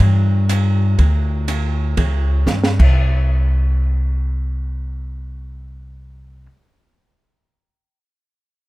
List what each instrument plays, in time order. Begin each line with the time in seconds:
0.00 upright bass G2, kick, ride
0.49 hi-hat pedal, ride
0.99 upright bass D2, kick, ride
1.48 hi-hat pedal, ride
1.97 upright bass C#2, kick, ride
2.47 upright bass G2, snare, hi-hat pedal
2.64 snare
2.79 upright bass C2, kick, crash